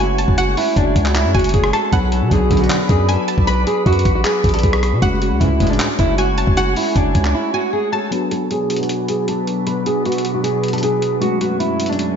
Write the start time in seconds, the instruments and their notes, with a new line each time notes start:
Already playing: 808-style bass F#1, tine electric piano G#3 A3 C#4 F#4, ambient pad F#4 G#4 C#5 G#5
0.00 nylon-string guitar F#4, synth pluck G#5
0.18 synth pluck A5, closed hi-hat
0.28 808-style bass F#1, kick
0.38 nylon-string guitar F#4, synth pluck F#5, closed hi-hat
0.57 nylon-string guitar E4, open hi-hat
0.76 808-style bass F#1, nylon-string guitar D4, kick, closed hi-hat
0.96 808-style bass C#2, kick, closed hi-hat
1.05 nylon-string guitar D4, clap
1.15 nylon-string guitar E4, clap, closed hi-hat
1.25 808-style bass F#2
1.34 808-style bass F#1, nylon-string guitar F#4, synth pluck G#5, kick, closed hi-hat
1.39 closed hi-hat
1.44 closed hi-hat
1.49 closed hi-hat
1.54 808-style bass F#1, nylon-string guitar G#4, kick, closed hi-hat
1.64 cross-stick
1.73 nylon-string guitar A4, synth pluck A5, cross-stick, closed hi-hat
1.91 808-style bass B1, tine electric piano F#3 B3 D4 F#4, ambient pad B4 D5 B5, nylon-string guitar B4, synth pluck F#5, kick, closed hi-hat
2.12 nylon-string guitar A4, closed hi-hat
2.22 808-style bass B2
2.31 analog polysynth B1 F#2 D3, 808-style bass B1, nylon-string guitar G#4, kick, closed hi-hat
2.51 analog polysynth B1 F#2 D3, 808-style bass B1, kick, closed hi-hat
2.57 nylon-string guitar F#4, closed hi-hat
2.64 closed hi-hat
2.70 clap, closed hi-hat
2.89 808-style bass F#2, nylon-string guitar G#4, kick, closed hi-hat
3.09 nylon-string guitar A4, synth pluck G#5, closed hi-hat
3.28 synth pluck A5, closed hi-hat
3.38 808-style bass B1, kick
3.47 nylon-string guitar B4, synth pluck B5, closed hi-hat
3.67 nylon-string guitar G#4, closed hi-hat
3.86 808-style bass F#2, nylon-string guitar F#4, kick, closed hi-hat
3.93 closed hi-hat
3.99 closed hi-hat
4.05 808-style bass A1, kick, closed hi-hat
4.15 nylon-string guitar F#4
4.24 nylon-string guitar G#4, clap, closed hi-hat
4.44 808-style bass A1, kick, closed hi-hat
4.49 closed hi-hat
4.54 nylon-string guitar A4, closed hi-hat
4.59 closed hi-hat
4.63 808-style bass B1, nylon-string guitar G#4, kick, closed hi-hat
4.73 cross-stick
4.83 cross-stick, closed hi-hat
4.93 808-style bass B2
5.01 808-style bass F#1, tine electric piano G#3 A3 C#4 F#4, nylon-string guitar F#4, ambient pad F#4 G#4 C#5 G#5, synth pluck F#5, kick, closed hi-hat
5.21 nylon-string guitar F#4, closed hi-hat
5.31 808-style bass C#2
5.40 analog polysynth A1 G#2 C#3, 808-style bass C#2, nylon-string guitar E4, kick, closed hi-hat
5.60 808-style bass F#1, analog polysynth C#2 A2 G#3, kick, closed hi-hat
5.67 nylon-string guitar D4, closed hi-hat
5.73 closed hi-hat
5.80 clap, closed hi-hat
5.99 808-style bass F#1, nylon-string guitar E4, kick, closed hi-hat
6.18 nylon-string guitar F#4, synth pluck G#5, closed hi-hat
6.38 synth pluck A5, closed hi-hat
6.47 808-style bass F#1, kick
6.57 nylon-string guitar F#4, synth pluck F#5, closed hi-hat
6.76 nylon-string guitar E4, open hi-hat
6.96 808-style bass F#1, nylon-string guitar D4, kick, closed hi-hat
7.15 808-style bass C#2, kick, closed hi-hat
7.25 nylon-string guitar D4, clap
7.34 nylon-string guitar E4
7.54 nylon-string guitar F#4, synth pluck G#5
7.73 nylon-string guitar G#4
7.92 nylon-string guitar A4, synth pluck A5
8.11 ambient pad B2 F#3 D4 B4, tine electric piano F#3 B3 D4 F#4, nylon-string guitar B4, closed hi-hat
8.31 nylon-string guitar A4, closed hi-hat
8.51 nylon-string guitar G#4, closed hi-hat
8.70 closed hi-hat
8.76 nylon-string guitar F#4, closed hi-hat
8.83 closed hi-hat
8.89 closed hi-hat
9.08 nylon-string guitar G#4, closed hi-hat
9.28 nylon-string guitar A4, closed hi-hat
9.47 closed hi-hat
9.67 nylon-string guitar B4, closed hi-hat
9.86 nylon-string guitar G#4, closed hi-hat
10.05 nylon-string guitar F#4, closed hi-hat
10.12 closed hi-hat
10.18 closed hi-hat
10.25 closed hi-hat
10.34 nylon-string guitar F#4
10.43 nylon-string guitar G#4, closed hi-hat
10.64 closed hi-hat
10.68 closed hi-hat
10.73 nylon-string guitar A4, closed hi-hat
10.78 closed hi-hat
10.83 nylon-string guitar G#4, closed hi-hat
11.02 closed hi-hat
11.20 ambient pad F#2 C#4 G#4, tine electric piano G#3 A3 C#4 F#4, nylon-string guitar F#4, closed hi-hat
11.41 nylon-string guitar F#4, closed hi-hat
11.60 nylon-string guitar E4, closed hi-hat
11.80 closed hi-hat
11.86 nylon-string guitar D4, closed hi-hat
11.93 closed hi-hat
11.99 closed hi-hat